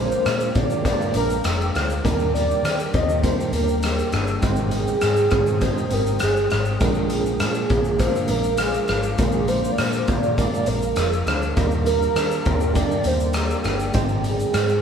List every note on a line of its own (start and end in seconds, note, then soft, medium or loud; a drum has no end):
0.00 0.13 A#1 medium
0.00 2.04 A#2 medium
0.00 0.85 G#3 medium
0.00 1.44 G#3 medium
0.00 0.85 A#3 medium
0.00 0.55 D4 medium
0.00 0.86 D4 medium
0.00 0.25 F4 medium
0.00 0.87 F4 medium
0.00 0.39 G#4 medium
0.00 2.06 A#4 medium
0.00 4.38 A#4 medium
0.00 0.57 C5 loud
0.00 1.99 F5 medium
0.00 6.78 G5 medium
0.00 4.38 D6 medium
0.12 shaker medium
0.26 0.50 A#2 loud
0.26 0.84 F4 medium
0.26 cross-stick medium
0.26 closed hi-hat medium
0.26 shaker medium
0.40 shaker medium
0.55 0.91 A#2 medium
0.55 1.15 D4 medium
0.55 0.85 D5 loud
0.55 kick loud
0.55 closed hi-hat medium
0.55 shaker medium
0.70 shaker medium
0.85 1.57 G#3 medium
0.85 1.57 A#3 medium
0.85 1.58 D4 medium
0.85 1.74 F4 medium
0.85 1.58 F4 medium
0.85 0.93 B4 medium
0.85 1.14 D5 loud
0.85 kick medium
0.85 closed hi-hat medium
0.85 shaker medium
0.94 1.62 C5 medium
1.02 shaker soft
1.14 1.39 A#1 loud
1.14 2.05 D4 medium
1.14 1.71 A#4 loud
1.14 closed hi-hat medium
1.14 shaker medium
1.30 shaker medium
1.44 1.69 F1 loud
1.44 2.11 G#3 medium
1.44 cross-stick loud
1.44 closed hi-hat medium
1.44 shaker medium
1.61 shaker medium
1.75 1.99 D2 loud
1.75 2.05 F4 medium
1.75 cross-stick medium
1.75 closed hi-hat soft
1.75 shaker soft
1.90 shaker medium
2.04 2.52 D#2 loud
2.04 5.55 D#3 medium
2.04 2.76 G3 medium
2.04 2.76 A#3 medium
2.04 2.77 D4 medium
2.04 2.64 D4 medium
2.04 2.77 D#4 medium
2.04 2.32 A#4 medium
2.04 2.78 A#4 medium
2.04 kick loud
2.04 closed hi-hat medium
2.04 shaker medium
2.19 shaker medium
2.34 3.84 G3 medium
2.34 2.90 D5 loud
2.34 closed hi-hat medium
2.34 shaker medium
2.51 shaker medium
2.63 2.88 D#3 loud
2.63 2.78 C4 medium
2.63 cross-stick medium
2.63 closed hi-hat medium
2.63 shaker medium
2.79 shaker medium
2.94 3.30 D#2 loud
2.94 3.53 A#3 medium
2.94 3.22 D#5 loud
2.94 kick loud
2.94 closed hi-hat medium
2.94 shaker medium
3.09 shaker medium
3.22 3.95 G3 medium
3.22 3.95 A#3 medium
3.22 3.96 D4 medium
3.22 4.12 D4 medium
3.22 3.96 D#4 medium
3.22 3.96 A#4 medium
3.22 3.52 C5 medium
3.22 kick medium
3.22 closed hi-hat medium
3.22 shaker medium
3.40 shaker medium
3.53 4.01 D#2 medium
3.53 4.49 A#3 medium
3.53 4.10 A#4 medium
3.53 closed hi-hat medium
3.53 shaker medium
3.68 shaker medium
3.83 7.11 G3 medium
3.83 cross-stick loud
3.83 closed hi-hat medium
3.83 shaker medium
3.99 shaker medium
4.12 4.37 G1 loud
4.12 4.43 D4 medium
4.12 cross-stick medium
4.12 closed hi-hat soft
4.12 shaker soft
4.27 shaker medium
4.42 4.91 G#1 loud
4.42 5.15 G#3 medium
4.42 5.15 C4 medium
4.42 5.15 D#4 medium
4.42 5.02 D#4 medium
4.42 6.79 C5 medium
4.42 5.16 C5 loud
4.42 5.16 G5 medium
4.42 6.79 D#6 medium
4.42 kick loud
4.42 closed hi-hat medium
4.42 shaker medium
4.56 shaker medium
4.71 5.64 G#4 loud
4.71 closed hi-hat medium
4.71 shaker medium
4.87 shaker medium
5.01 5.27 G#2 loud
5.01 5.61 D#4 medium
5.01 cross-stick medium
5.01 closed hi-hat medium
5.01 shaker medium
5.16 shaker medium
5.31 5.68 G#2 medium
5.31 5.92 C4 medium
5.31 kick loud
5.31 cross-stick loud
5.31 closed hi-hat medium
5.31 shaker medium
5.46 shaker medium
5.61 6.34 G#3 medium
5.61 6.34 C4 medium
5.61 6.51 D#4 medium
5.61 6.34 D#4 medium
5.61 6.35 G4 medium
5.61 5.95 C5 loud
5.61 6.35 C5 medium
5.61 kick medium
5.61 closed hi-hat medium
5.61 shaker medium
5.78 shaker soft
5.90 6.16 G#1 medium
5.90 6.88 C4 medium
5.90 6.22 A#4 loud
5.90 closed hi-hat medium
5.90 shaker medium
6.06 shaker medium
6.19 6.46 G1 medium
6.19 6.64 G#4 medium
6.19 cross-stick loud
6.19 closed hi-hat medium
6.19 shaker medium
6.36 shaker soft
6.50 6.76 G#1 medium
6.50 6.82 D#4 medium
6.50 cross-stick medium
6.50 closed hi-hat soft
6.50 shaker soft
6.65 shaker medium
6.80 7.42 A#1 loud
6.80 9.18 A#2 medium
6.80 7.53 G#3 medium
6.80 7.53 A#3 medium
6.80 7.54 D4 medium
6.80 7.39 D4 medium
6.80 7.54 F4 medium
6.80 13.91 A#4 medium
6.80 7.54 A#4 loud
6.80 11.53 F5 medium
6.80 13.91 D6 medium
6.80 kick loud
6.80 closed hi-hat medium
6.80 shaker medium
6.94 shaker medium
7.09 8.58 F3 medium
7.09 8.01 G#4 medium
7.09 closed hi-hat medium
7.09 shaker medium
7.26 shaker medium
7.40 7.65 A#2 loud
7.40 8.00 D4 medium
7.40 cross-stick medium
7.40 closed hi-hat medium
7.40 shaker medium
7.54 shaker medium
7.70 8.06 A#1 loud
7.70 8.28 G#3 medium
7.70 kick loud
7.70 closed hi-hat medium
7.70 shaker medium
7.84 shaker medium
7.99 8.72 G#3 medium
7.99 8.72 A#3 medium
7.99 8.90 D4 medium
7.99 8.73 D4 medium
7.99 8.73 F4 medium
7.99 8.73 A#4 medium
7.99 8.30 C5 medium
7.99 kick medium
7.99 closed hi-hat medium
7.99 shaker medium
8.16 shaker medium
8.28 8.77 A#1 medium
8.28 10.07 G#3 medium
8.28 8.58 A#4 medium
8.28 closed hi-hat medium
8.28 shaker medium
8.43 shaker medium
8.57 9.48 F3 medium
8.57 9.02 G#4 medium
8.57 cross-stick medium
8.57 closed hi-hat medium
8.57 shaker medium
8.74 shaker medium
8.88 9.13 G#1 loud
8.88 9.19 D4 medium
8.88 cross-stick medium
8.88 closed hi-hat soft
8.88 shaker soft
9.03 shaker medium
9.18 9.67 A#1 loud
9.18 11.57 A#2 medium
9.18 9.91 G#3 medium
9.18 9.92 A#3 medium
9.18 9.78 D4 medium
9.18 9.92 D4 medium
9.18 9.92 F4 medium
9.18 9.50 G#4 loud
9.18 9.92 A#4 medium
9.18 kick loud
9.18 closed hi-hat medium
9.18 shaker medium
9.32 shaker medium
9.48 10.96 F3 medium
9.48 9.73 C5 loud
9.48 closed hi-hat medium
9.48 shaker medium
9.64 shaker medium
9.72 9.82 D5 medium
9.78 10.03 A#2 loud
9.78 10.38 D4 medium
9.78 9.91 C5 medium
9.78 cross-stick medium
9.78 closed hi-hat medium
9.78 shaker medium
9.89 10.00 A#4 medium
9.89 shaker medium
9.98 10.10 C5 medium
10.08 10.44 A#2 loud
10.08 10.66 G#3 medium
10.08 10.38 D5 loud
10.08 kick loud
10.08 closed hi-hat medium
10.08 shaker medium
10.23 shaker medium
10.36 11.09 G#3 medium
10.36 11.09 A#3 medium
10.36 11.10 D4 medium
10.36 11.27 D4 medium
10.36 11.10 F4 medium
10.36 11.11 A#4 medium
10.36 10.69 D5 loud
10.36 kick medium
10.36 closed hi-hat medium
10.36 shaker medium
10.54 shaker medium
10.66 10.92 A#1 loud
10.66 11.63 G#3 medium
10.66 11.27 A#4 loud
10.66 closed hi-hat medium
10.66 shaker medium
10.82 shaker medium
10.96 11.21 F1 loud
10.96 11.63 F3 medium
10.96 cross-stick medium
10.96 closed hi-hat medium
10.96 shaker medium
11.13 shaker medium
11.27 11.51 D2 loud
11.27 11.57 D4 medium
11.27 cross-stick loud
11.27 closed hi-hat soft
11.27 shaker soft
11.42 shaker medium
11.56 12.05 D#2 loud
11.56 14.82 D#3 medium
11.56 12.29 G3 medium
11.56 12.29 A#3 medium
11.56 12.29 D4 medium
11.56 12.16 D4 medium
11.56 12.30 D#4 medium
11.56 12.30 A#4 loud
11.56 13.93 D5 medium
11.56 14.82 G5 medium
11.56 kick loud
11.56 closed hi-hat medium
11.56 shaker medium
11.71 shaker medium
11.86 13.35 G3 medium
11.86 12.72 A#4 loud
11.86 closed hi-hat medium
11.86 shaker medium
12.02 shaker medium
12.15 12.40 D#3 loud
12.15 12.75 D4 medium
12.15 cross-stick medium
12.15 closed hi-hat medium
12.15 shaker medium
12.31 shaker medium
12.45 12.82 D#2 loud
12.45 13.04 A#3 medium
12.45 kick loud
12.45 closed hi-hat medium
12.45 shaker medium
12.61 shaker medium
12.74 13.47 G3 medium
12.74 13.48 A#3 medium
12.74 13.48 D4 medium
12.74 13.63 D4 medium
12.74 13.48 D#4 medium
12.74 12.83 A4 medium
12.74 13.08 D5 loud
12.74 kick medium
12.74 closed hi-hat medium
12.74 shaker medium
12.83 13.51 A#4 medium
12.91 shaker medium
13.04 13.53 D#2 loud
13.04 14.01 A#3 medium
13.04 13.36 C5 loud
13.04 closed hi-hat medium
13.04 shaker medium
13.20 shaker medium
13.33 14.82 G3 medium
13.33 13.77 A#4 medium
13.33 cross-stick medium
13.33 closed hi-hat medium
13.33 shaker medium
13.50 shaker medium
13.64 13.89 G1 loud
13.64 13.94 D4 medium
13.64 cross-stick medium
13.64 closed hi-hat soft
13.64 shaker soft
13.80 shaker medium
13.93 14.42 G#1 loud
13.93 14.82 G#2 medium
13.93 14.66 G#3 medium
13.93 14.66 C4 medium
13.93 14.67 D#4 medium
13.93 14.52 D#4 medium
13.93 14.67 C5 loud
13.93 14.67 G5 medium
13.93 kick loud
13.93 closed hi-hat medium
13.93 shaker medium
13.97 14.82 C5 medium
14.08 shaker medium
14.24 closed hi-hat medium
14.24 shaker medium
14.29 14.82 G#4 loud
14.40 shaker medium
14.53 14.78 G#2 loud
14.53 14.82 D#4 medium
14.53 cross-stick medium
14.53 closed hi-hat medium
14.53 shaker medium
14.69 shaker medium